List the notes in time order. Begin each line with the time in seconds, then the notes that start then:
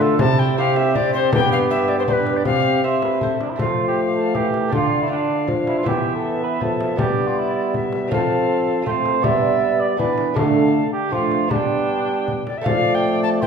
Already playing: D3 A3 D4 F4 A4
0.01 A4, frame drum
0.19 C3 C4 E4 A5, frame drum
0.39 G5
0.58 E4 G4 C5 F5
0.76 E5, frame drum
0.95 C4 E4 G4 C5 D5, frame drum
1.14 C5, frame drum
1.32 G2 B3 G4 G5, frame drum
1.52 F5
1.70 D4 B4 E5
1.88 D5, frame drum
1.99 C5
2.08 B3 D4 G4 B4 C5, frame drum
2.12 B4
2.27 frame drum
2.36 D5
2.45 C3 C4 G4 F5, frame drum
2.83 C4 C5 E5
3.02 B4, frame drum
3.21 C4 A4 C5, frame drum
3.40 D4, frame drum
3.50 E4
3.56 F3 A3 C4 F4 A4, frame drum
3.60 A3 F5
3.88 G4
4.17 A4
4.34 E3 G4, frame drum
4.54 frame drum
4.69 D3 A3 D4 F4
4.73 D3 F4 G5, frame drum
4.77 F5
5.02 E4
5.07 A3 D4 F4
5.11 D4 G5
5.15 F5
5.47 F3, frame drum
5.67 E4, frame drum
5.78 F4
5.83 E3 B3 E4 E5, frame drum
5.87 G4
6.15 A4
6.44 B4
6.60 F3 A4, frame drum
6.81 frame drum
6.96 G3 B3 D4 G4 D5, frame drum
7.28 F4
7.37 E4
7.74 E5, frame drum
7.93 frame drum
8.08 F3 C4 F4
8.12 C4 A4 F5, frame drum
8.82 A3 C4 F4
8.86 C4 C5 G5, frame drum
8.91 F5
9.06 frame drum
9.22 G3 B3 D4 D5 E5, frame drum
9.80 D5
9.97 E3 B3 D4 B4 D5, frame drum
10.18 frame drum
10.34 D3 A3 D4 A4 F5, frame drum
10.93 G4
11.09 F3 A3 D4 F4, frame drum
11.13 F5
11.32 frame drum
11.48 G3 B3 D4 A5, frame drum
11.56 G5
12.28 frame drum
12.47 D5, frame drum
12.57 E5
12.61 F3 A3 C4 F5
12.66 F3 A3 D5 F5, frame drum
12.94 G5
13.23 A5
13.41 E3 C5 G5, frame drum